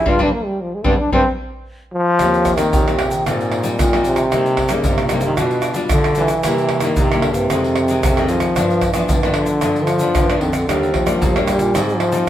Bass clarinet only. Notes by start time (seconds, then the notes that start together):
0.06 G2
0.20 G2
0.85 G2
1.13 G2
2.19 D#2
2.73 D#2
3.10 D#3
3.26 G#2
3.78 A#2
4.32 C3
4.85 C3
5.23 C3
5.37 B2
5.91 D3
6.44 C3
6.96 C3
7.35 G2
7.50 F2
8.03 F2
8.57 G2
9.10 G2
9.62 D3
10.15 G2
10.40 F2
10.67 D#2
11.22 D#2
11.59 A#2
11.74 G#2